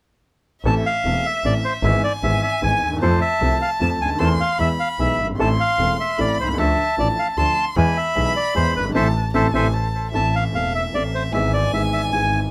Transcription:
0.65 double bass A1, upright piano A1 A2 E3 A3 C4 A4, violin E5, bandoneon A5
0.86 bandoneon F5
1.05 double bass E1, upright piano E1 E2 E3 A3 C4 A4
1.26 bandoneon E5
1.44 double bass A1, upright piano A1 A2 E3 A3 C4 A4, bandoneon D5
1.65 bandoneon C5
1.83 double bass G#1, upright piano G#1 G#2 E3 G#3 B3 G#4, bandoneon E5, violin G#5
2.04 bandoneon D5
2.23 double bass G#1, upright piano G#1 G#2 E3 G#3 B3 G#4, bandoneon E5
2.43 bandoneon E5
2.62 double bass G#1, upright piano G#1 G#2 E3 G#3 B3 G#4, bandoneon G#5
2.82 double bass D#2
2.87 upright piano D2
2.92 upright piano D#2
2.97 upright piano E2
3.02 double bass F2, upright piano F2 F3 A3 C4 A4, bandoneon C5, violin A5
3.21 bandoneon E5
3.41 double bass C2, upright piano C2 C3 F3 A3 C4 A4
3.62 bandoneon F5
3.80 double bass F2, upright piano F2 F3 A3 C4 A4, bandoneon A5
3.99 double bass D2, bandoneon G#5
4.05 upright piano C#2
4.10 upright piano D2
4.15 upright piano D#2, double bass E2, violin C6
4.20 upright piano E2 E3 A3 C4 A4, bandoneon A5
4.40 bandoneon F5
4.59 upright piano E2 E3 G#3 B3 G#4, double bass E2, bandoneon E5, violin B5
4.80 bandoneon F5
4.99 double bass B1, upright piano B1 B2 E3 G#3 B3 G#4, bandoneon E5
5.19 double bass G1
5.24 upright piano F#1
5.29 upright piano G1
5.35 upright piano G#1, double bass A1
5.39 upright piano A1 A2 E3 A3 C4 A4, bandoneon A5, violin C6
5.60 bandoneon F5
5.79 double bass E1, upright piano E1 E2 E3 A3 C4 A4
6.00 bandoneon E5
6.18 upright piano A1 A2 E3 A3 C4 A4, double bass A1, bandoneon D5, violin B5
6.38 double bass C2, bandoneon C5
6.43 upright piano B1
6.48 upright piano C2
6.53 upright piano C#2
6.58 upright piano D2 D3 F3 A3 D4 A4, double bass D2, bandoneon E5, violin A5
6.98 upright piano A1 A2 F3 A3 D4 A4, double bass A1, bandoneon D5
7.19 bandoneon F5
7.37 double bass D2, upright piano D2 D3 F3 A3 D4 A4, bandoneon A5, violin C6
7.76 double bass E2, upright piano E2 E3 G#3 B3 G#4, bandoneon G#5, violin B5
7.97 bandoneon E5
8.15 upright piano B1 B2 E3 G#3 B3 G#4, double bass B1
8.36 bandoneon D5
8.54 upright piano E2 E3 G#3 B3 G#4, double bass E2, bandoneon C5
8.76 upright piano F#1, double bass G1, bandoneon B4
8.84 upright piano G1
8.90 upright piano G#1
8.95 double bass A1, upright piano C3 E3 A3, bandoneon A4 C5 E5, violin A5
9.34 double bass A1, upright piano C3 E3 A3, bandoneon A4 C5 E5, violin A5
9.54 double bass A1, upright piano C3 E3 A3, bandoneon A4 C5 E5, violin G#5
9.73 violin A5
10.12 double bass A1, upright piano A1 A2 E3 A3 C4 A4, violin E5, bandoneon A5
10.36 bandoneon F5
10.52 double bass E1, upright piano E1 E2 E3 A3 C4, bandoneon F5
10.56 upright piano A4
10.75 bandoneon E5
10.92 double bass A1, upright piano A1 A2 E3 A3 C4, bandoneon D5
10.97 upright piano A4
11.15 bandoneon C5
11.31 double bass G#1, upright piano G#1 G#2 E3 G#3 B3 G#4, bandoneon E5, violin G#5
11.53 bandoneon D5
11.71 upright piano G#1 G#2 E3 G#3 B3 G#4, double bass G#1, bandoneon E5
11.93 bandoneon E5
12.11 double bass G#1, upright piano G#1 G#2 E3 G#3 B3 G#4, bandoneon G#5

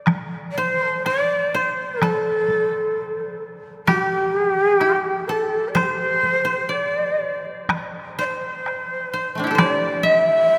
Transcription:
0.07 taiko rim, taiko high
0.51 shakuhachi D5
0.58 koto C5, shakuhachi C5
0.88 koto A4
1.06 koto D5, shakuhachi D5, taiko rim
1.54 koto C5, shakuhachi C5
2.01 shakuhachi A4, koto A4, taiko rim, taiko high
2.48 taiko high
3.87 shakuhachi G4, koto G4, taiko rim, taiko high
4.36 shakuhachi G#4
4.49 shakuhachi G4
4.63 shakuhachi G#4
4.76 shakuhachi G4
4.80 koto G4, taiko rim
5.27 koto A4, shakuhachi A4 C5
5.68 shakuhachi D5
5.75 koto C5, shakuhachi D5, taiko rim, taiko high
5.80 shakuhachi C5
6.23 taiko high
6.45 koto C5
6.69 koto D5, shakuhachi D5
7.69 taiko rim, taiko high
8.19 koto C5, shakuhachi D5
8.24 shakuhachi C5
8.66 taiko rim
9.13 koto C5
9.35 koto A3 C4
9.39 koto D4
9.44 koto E4 G4
9.51 koto A4
9.55 koto C5 D5, shakuhachi D5, taiko rim, taiko high
10.03 koto E5, shakuhachi E5, taiko high

